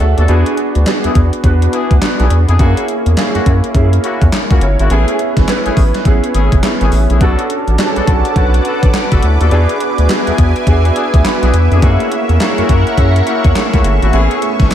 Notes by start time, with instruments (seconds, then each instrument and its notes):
Already playing: grand piano C#4 D4 F#4 G#4 D5 E5
0.00 analog synth bass D2, grand piano A4 F#5, closed hi-hat
0.17 analog synth bass D#2, horn section B3 D4 F#4 A4, grand piano F#4 D5, closed hi-hat
0.28 analog synth bass E2, horn section B3 D4 E4 G#4, grand piano B3 D4 F#4 G#4, closed hi-hat
0.46 closed hi-hat
0.57 closed hi-hat
0.75 analog synth bass D2, closed hi-hat
0.86 grand piano B3 D4 F#4 G#4, snare, clap, closed hi-hat
1.04 analog synth bass E2, horn section B3 D4 E4 G#4, closed hi-hat
1.15 analog synth bass E2, kick, closed hi-hat
1.33 closed hi-hat
1.44 analog synth bass E2, grand piano B3 D4 F#4 B4, kick, closed hi-hat
1.62 closed hi-hat
1.72 horn section B3 D4 E4 G#4, closed hi-hat
1.91 analog synth bass D2, kick, closed hi-hat
2.02 grand piano B3 D4 F#4 B4, snare, clap, closed hi-hat
2.19 analog synth bass B1, horn section B3 D4 E4 G#4, closed hi-hat
2.30 analog synth bass E2, closed hi-hat
2.48 analog synth bass F2, horn section B3 D4 E4 G#4, closed hi-hat
2.59 analog synth bass F#2, horn section A#3 C#4 E4 F#4, grand piano A#3 C#4 E4 G#4, kick, closed hi-hat
2.77 closed hi-hat
2.88 closed hi-hat
3.06 analog synth bass E2, closed hi-hat
3.17 grand piano A#3 C#4 E4 G#4, snare, clap, closed hi-hat
3.35 analog synth bass F#2, horn section A#3 C#4 E4 F#4, closed hi-hat
3.46 analog synth bass F#2, kick, closed hi-hat
3.64 closed hi-hat
3.75 analog synth bass F#2, grand piano A#3 C#4 E4 G#4, kick, closed hi-hat
3.93 closed hi-hat
4.03 horn section A#3 C#4 E4 F#4, closed hi-hat
4.22 analog synth bass E2, kick, closed hi-hat
4.32 snare, clap, closed hi-hat
4.50 analog synth bass C#2, horn section A#3 C#4 E4 F#4, grand piano C#4 A#4, kick, closed hi-hat
4.61 analog synth bass G1, grand piano E4 C#5, closed hi-hat
4.79 analog synth bass G#1, horn section A#3 C#4 E4 F#4, grand piano G#4 E5, closed hi-hat
4.90 analog synth bass A1, horn section A3 C#4 E4 G#4, grand piano B3 C#4 E4 G#4, closed hi-hat
5.08 closed hi-hat
5.19 closed hi-hat
5.37 analog synth bass G#1, kick, snare, closed hi-hat
5.48 grand piano B3 C#4 E4 B4, snare, clap, closed hi-hat
5.65 analog synth bass A1, horn section A3 C#4 E4 G#4, closed hi-hat
5.77 analog synth bass A1, kick, open hi-hat
5.94 snare, closed hi-hat
6.05 analog synth bass A1, grand piano B3 C#4 E4 G#4, kick, closed hi-hat
6.24 closed hi-hat
6.34 analog synth bass G#1, horn section A3 C#4 E4 G#4, closed hi-hat
6.52 analog synth bass F#1, kick, closed hi-hat
6.63 grand piano B3 C#4 E4 G#4, snare, clap, closed hi-hat
6.81 analog synth bass G#1, horn section A3 C#4 E4 G#4, closed hi-hat
6.92 analog synth bass A1, open hi-hat
7.10 analog synth bass A#1, horn section A3 C#4 E4 G#4, closed hi-hat
7.20 analog synth bass B1, horn section B3 D4 F#4 A4, grand piano C#4 D4 F#4 A4, analog synth pad B4 F#5 A5 D6, kick, closed hi-hat
7.39 closed hi-hat
7.50 closed hi-hat
7.67 analog synth bass A1, closed hi-hat
7.78 grand piano C#4 D4 F#4 G#4, snare, clap, closed hi-hat
7.86 grand piano A4
7.96 analog synth bass B1, horn section B3 D4 F#4 A4, closed hi-hat
8.07 analog synth bass B1, kick, closed hi-hat
8.25 closed hi-hat
8.36 analog synth bass B1, grand piano C#4 D4 F#4 B4, kick, closed hi-hat
8.54 closed hi-hat
8.65 horn section B3 D4 F#4 A4, closed hi-hat
8.83 analog synth bass A1, kick, closed hi-hat
8.94 snare, clap, closed hi-hat
9.11 analog synth bass F#1, horn section B3 D4 F#4 A4, grand piano C#4 A4, kick, closed hi-hat
9.23 analog synth bass D2, grand piano E4 C#5, closed hi-hat
9.40 analog synth bass D#2, horn section B3 D4 F#4 A4, grand piano F#4 D5, closed hi-hat
9.51 analog synth bass E2, horn section B3 D4 E4 G#4, grand piano B3 D4 F#4 G#4, analog synth pad E5 G#5, closed hi-hat
9.69 closed hi-hat
9.80 closed hi-hat
9.98 analog synth bass D2, closed hi-hat
10.09 grand piano B3 D4 F#4 G#4, snare, clap, closed hi-hat
10.27 analog synth bass E2, horn section B3 D4 E4 G#4, closed hi-hat
10.38 analog synth bass E2, kick, closed hi-hat
10.56 closed hi-hat
10.67 analog synth bass E2, grand piano B3 D4 F#4 G#4, kick, closed hi-hat
10.85 closed hi-hat
10.96 horn section B3 D4 E4 G#4, closed hi-hat
11.14 analog synth bass D2, kick, closed hi-hat
11.25 grand piano B3 D4 F#4 B4 B5, snare, clap, closed hi-hat
11.42 analog synth bass B1, horn section B3 D4 E4 G#4, closed hi-hat
11.53 analog synth bass E2, closed hi-hat
11.71 analog synth bass F2, horn section B3 D4 E4 G#4, closed hi-hat
11.82 analog synth bass F#2, grand piano A3 C#4 E4 G#4, horn section A#3 C#4 E4 F#4, analog synth pad A#4 F#5 C#6, kick, closed hi-hat
11.89 grand piano A#3
12.00 closed hi-hat
12.12 closed hi-hat
12.29 analog synth bass E2, closed hi-hat
12.40 grand piano A#3 C#4 E4 G#4, snare, clap, closed hi-hat
12.58 analog synth bass F#2, horn section A#3 C#4 E4 F#4, closed hi-hat
12.69 analog synth bass F#2, kick, closed hi-hat
12.87 closed hi-hat
12.97 analog synth bass F#2, grand piano A#3 C#4 E4 G#4, kick, closed hi-hat
13.16 closed hi-hat
13.26 horn section A#3 C#4 E4 F#4, closed hi-hat
13.45 analog synth bass E2, kick, closed hi-hat
13.55 grand piano A3 C#4 E4 G#4, snare, clap, closed hi-hat
13.62 grand piano A#3
13.73 analog synth bass C#2, horn section A#3 C#4 E4 F#4, kick, closed hi-hat
13.84 analog synth bass G1, closed hi-hat
14.02 analog synth bass G#1, horn section A#3 C#4 E4 F#4, closed hi-hat
14.13 analog synth bass A1, horn section A3 C#4 E4 G#4, analog synth pad A3 G#5, grand piano B3 C4 E4 G#4, closed hi-hat
14.20 grand piano C#4
14.31 closed hi-hat
14.42 closed hi-hat
14.60 analog synth bass G#1, kick, snare, closed hi-hat
14.71 grand piano B3 C#4, snare, closed hi-hat